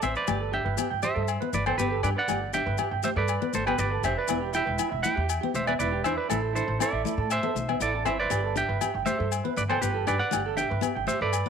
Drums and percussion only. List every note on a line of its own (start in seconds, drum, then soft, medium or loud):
0.02 low agogo medium
0.02 maracas medium
0.16 maracas soft
0.27 low agogo medium
0.27 maracas medium
0.78 low agogo medium
0.78 maracas loud
1.02 maracas medium
1.28 low agogo medium
1.28 maracas medium
1.53 maracas medium
1.66 low agogo medium
1.79 maracas medium
2.03 low agogo medium
2.03 maracas medium
2.28 low agogo medium
2.28 maracas medium
2.53 maracas medium
2.78 low agogo medium
2.78 maracas medium
3.03 maracas medium
3.28 low agogo medium
3.28 maracas loud
3.53 maracas medium
3.67 low agogo medium
3.78 maracas loud
4.03 low agogo medium
4.03 maracas medium
4.28 low agogo medium
4.28 maracas medium
4.53 maracas medium
4.79 low agogo medium
4.79 maracas loud
5.04 maracas medium
5.29 low agogo medium
5.29 maracas loud
5.55 maracas medium
5.67 low agogo medium
5.80 maracas medium
6.04 low agogo medium
6.04 maracas medium
6.30 low agogo medium
6.30 maracas medium
6.56 maracas medium
6.80 low agogo medium
6.80 maracas loud
7.06 maracas medium
7.30 low agogo medium
7.30 maracas loud
7.56 maracas medium
7.69 low agogo medium
7.81 maracas medium
8.05 low agogo medium
8.05 maracas medium
8.31 low agogo medium
8.31 maracas medium
8.56 maracas medium
8.81 low agogo medium
8.81 maracas loud
9.07 maracas medium
9.32 low agogo medium
9.32 maracas medium
9.57 maracas medium
9.70 low agogo medium
9.82 maracas medium
10.07 low agogo medium
10.07 maracas medium
10.32 low agogo medium
10.32 maracas medium
10.58 maracas medium
10.82 low agogo medium
10.82 maracas loud
11.09 maracas medium
11.33 low agogo medium
11.33 maracas medium